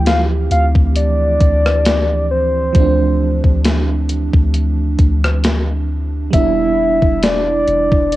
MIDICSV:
0, 0, Header, 1, 5, 480
1, 0, Start_track
1, 0, Tempo, 895522
1, 1474, Time_signature, 4, 2, 24, 8
1, 4375, End_track
2, 0, Start_track
2, 0, Title_t, "Soft synth lead"
2, 0, Program_c, 0, 80
2, 37, Note_on_c, 0, 77, 101
2, 113, Note_off_c, 0, 77, 0
2, 278, Note_on_c, 0, 77, 106
2, 353, Note_off_c, 0, 77, 0
2, 517, Note_on_c, 0, 74, 102
2, 1214, Note_off_c, 0, 74, 0
2, 1238, Note_on_c, 0, 72, 91
2, 1935, Note_off_c, 0, 72, 0
2, 3397, Note_on_c, 0, 76, 121
2, 3877, Note_on_c, 0, 74, 115
2, 3885, Note_off_c, 0, 76, 0
2, 4352, Note_off_c, 0, 74, 0
2, 4355, Note_on_c, 0, 74, 106
2, 4375, Note_off_c, 0, 74, 0
2, 4375, End_track
3, 0, Start_track
3, 0, Title_t, "FM electric piano"
3, 0, Program_c, 1, 5
3, 0, Control_c, 1, 64, 127
3, 0, Note_on_c, 1, 52, 78
3, 0, Note_on_c, 1, 53, 65
3, 0, Note_on_c, 1, 57, 59
3, 0, Note_on_c, 1, 60, 62
3, 0, Note_on_c, 1, 64, 53
3, 0, Note_on_c, 1, 67, 65
3, 1447, Note_off_c, 1, 53, 0
3, 1453, Note_off_c, 1, 57, 0
3, 1460, Note_off_c, 1, 60, 0
3, 1462, Note_on_c, 1, 53, 69
3, 1475, Note_on_c, 1, 57, 60
3, 1483, Note_off_c, 1, 52, 0
3, 1489, Note_on_c, 1, 60, 61
3, 1501, Note_on_c, 1, 62, 75
3, 3367, Note_off_c, 1, 53, 0
3, 3373, Note_off_c, 1, 57, 0
3, 3380, Note_off_c, 1, 60, 0
3, 3380, Note_on_c, 1, 55, 68
3, 3386, Note_off_c, 1, 62, 0
3, 3392, Note_on_c, 1, 59, 64
3, 3401, Control_c, 1, 64, 0
3, 3403, Note_off_c, 1, 64, 0
3, 3406, Note_off_c, 1, 67, 0
3, 3406, Note_on_c, 1, 62, 64
3, 3419, Note_on_c, 1, 64, 75
3, 3499, Control_c, 1, 64, 127
3, 4375, Note_off_c, 1, 55, 0
3, 4375, Note_off_c, 1, 59, 0
3, 4375, Note_off_c, 1, 62, 0
3, 4375, Note_off_c, 1, 64, 0
3, 4375, End_track
4, 0, Start_track
4, 0, Title_t, "808-style bass"
4, 0, Program_c, 2, 38
4, 0, Note_on_c, 2, 38, 100
4, 260, Note_off_c, 2, 38, 0
4, 274, Note_on_c, 2, 38, 106
4, 399, Note_off_c, 2, 38, 0
4, 404, Note_on_c, 2, 38, 104
4, 740, Note_off_c, 2, 38, 0
4, 754, Note_on_c, 2, 38, 106
4, 1453, Note_off_c, 2, 38, 0
4, 1474, Note_on_c, 2, 38, 112
4, 1829, Note_off_c, 2, 38, 0
4, 1844, Note_on_c, 2, 38, 97
4, 2305, Note_off_c, 2, 38, 0
4, 2324, Note_on_c, 2, 38, 101
4, 2660, Note_off_c, 2, 38, 0
4, 2674, Note_on_c, 2, 38, 106
4, 3373, Note_off_c, 2, 38, 0
4, 3394, Note_on_c, 2, 28, 115
4, 3749, Note_off_c, 2, 28, 0
4, 3764, Note_on_c, 2, 28, 104
4, 4100, Note_off_c, 2, 28, 0
4, 4114, Note_on_c, 2, 28, 101
4, 4239, Note_off_c, 2, 28, 0
4, 4244, Note_on_c, 2, 28, 104
4, 4375, Note_off_c, 2, 28, 0
4, 4375, End_track
5, 0, Start_track
5, 0, Title_t, "Drums"
5, 34, Note_on_c, 9, 42, 80
5, 38, Note_on_c, 9, 38, 126
5, 87, Note_off_c, 9, 42, 0
5, 92, Note_off_c, 9, 38, 0
5, 274, Note_on_c, 9, 42, 59
5, 328, Note_off_c, 9, 42, 0
5, 403, Note_on_c, 9, 36, 97
5, 457, Note_off_c, 9, 36, 0
5, 513, Note_on_c, 9, 42, 66
5, 566, Note_off_c, 9, 42, 0
5, 753, Note_on_c, 9, 42, 66
5, 754, Note_on_c, 9, 36, 91
5, 807, Note_off_c, 9, 42, 0
5, 808, Note_off_c, 9, 36, 0
5, 890, Note_on_c, 9, 37, 105
5, 943, Note_off_c, 9, 37, 0
5, 994, Note_on_c, 9, 42, 82
5, 999, Note_on_c, 9, 38, 109
5, 1048, Note_off_c, 9, 42, 0
5, 1053, Note_off_c, 9, 38, 0
5, 1473, Note_on_c, 9, 42, 73
5, 1474, Note_on_c, 9, 36, 117
5, 1527, Note_off_c, 9, 36, 0
5, 1527, Note_off_c, 9, 42, 0
5, 1843, Note_on_c, 9, 36, 88
5, 1897, Note_off_c, 9, 36, 0
5, 1953, Note_on_c, 9, 42, 83
5, 1958, Note_on_c, 9, 38, 125
5, 2007, Note_off_c, 9, 42, 0
5, 2012, Note_off_c, 9, 38, 0
5, 2193, Note_on_c, 9, 42, 65
5, 2247, Note_off_c, 9, 42, 0
5, 2323, Note_on_c, 9, 36, 99
5, 2377, Note_off_c, 9, 36, 0
5, 2434, Note_on_c, 9, 42, 63
5, 2487, Note_off_c, 9, 42, 0
5, 2673, Note_on_c, 9, 42, 62
5, 2674, Note_on_c, 9, 36, 91
5, 2727, Note_off_c, 9, 36, 0
5, 2727, Note_off_c, 9, 42, 0
5, 2810, Note_on_c, 9, 37, 111
5, 2864, Note_off_c, 9, 37, 0
5, 2914, Note_on_c, 9, 42, 77
5, 2920, Note_on_c, 9, 38, 109
5, 2968, Note_off_c, 9, 42, 0
5, 2973, Note_off_c, 9, 38, 0
5, 3394, Note_on_c, 9, 36, 118
5, 3394, Note_on_c, 9, 42, 71
5, 3448, Note_off_c, 9, 36, 0
5, 3448, Note_off_c, 9, 42, 0
5, 3764, Note_on_c, 9, 36, 90
5, 3817, Note_off_c, 9, 36, 0
5, 3873, Note_on_c, 9, 42, 79
5, 3878, Note_on_c, 9, 38, 124
5, 3927, Note_off_c, 9, 42, 0
5, 3932, Note_off_c, 9, 38, 0
5, 4114, Note_on_c, 9, 42, 62
5, 4167, Note_off_c, 9, 42, 0
5, 4244, Note_on_c, 9, 36, 100
5, 4297, Note_off_c, 9, 36, 0
5, 4353, Note_on_c, 9, 42, 62
5, 4375, Note_off_c, 9, 42, 0
5, 4375, End_track
0, 0, End_of_file